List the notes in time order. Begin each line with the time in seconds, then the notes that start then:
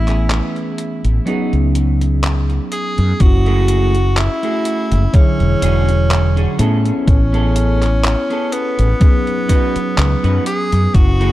Already playing: A1 E3 A3 B3 C#4 E4 G#4
0.07 B3 C#4 G#4, clap, closed hi-hat
0.30 clap, closed hi-hat
0.56 closed hi-hat
0.78 closed hi-hat
1.05 A1, closed hi-hat
1.25 F#3 B3 C#4 D#4 F#4 G#4, closed hi-hat
1.53 C#2, closed hi-hat
1.75 muted clean electric guitar stroke, closed hi-hat
2.01 closed hi-hat
2.24 clap, closed hi-hat
2.49 muted clean electric guitar stroke, closed hi-hat
2.71 G#4, muted clean electric guitar stroke, closed hi-hat
2.98 F#2, closed hi-hat
3.20 F#1 C#4 E4 F#4, kick, closed hi-hat
3.46 A3 E4 F#4 G#4, closed hi-hat
3.68 closed hi-hat
3.95 closed hi-hat
4.17 E4, clap, closed hi-hat
4.43 A3 E4 F#4 G#4, closed hi-hat
4.65 closed hi-hat
4.92 F#1, closed hi-hat
5.13 D3 F#3 C#4 E4 G#4 C#5, muted fretless electric bass stroke, kick, closed hi-hat
5.40 E1, closed hi-hat
5.61 E1 C#4 D4 F#4 G#4, closed hi-hat
5.89 closed hi-hat
6.10 muted clean electric guitar stroke, clap, closed hi-hat
6.36 C#4 D4 F#4 G#4, closed hi-hat
6.58 A2 B3 C#4 E4 G#4 A4, closed hi-hat
6.86 closed hi-hat
7.08 A1 C#4, kick, closed hi-hat
7.33 B3 C#4 G#4 A4, closed hi-hat
7.56 closed hi-hat
7.82 clap, closed hi-hat
8.04 clap, closed hi-hat
8.30 B3 C#4 G#4 A4, closed hi-hat
8.52 B3, closed hi-hat
8.79 A1, closed hi-hat
9.00 F#3 B3 C#4 D#4 G#4, kick, closed hi-hat
9.27 closed hi-hat
9.48 C#4 D#4 F#4 B4, kick, closed hi-hat
9.76 muted fretless electric bass stroke, closed hi-hat
9.97 C#2, muted clean electric guitar stroke, clap, closed hi-hat
10.23 F#2 C#4 D#4 F#4 B4, closed hi-hat
10.46 G#4, closed hi-hat
10.72 F#2, muted clean electric guitar stroke, closed hi-hat
10.94 F#1 C#4 E4 F#4, kick, closed hi-hat
11.20 A3 E4 F#4 G#4, closed hi-hat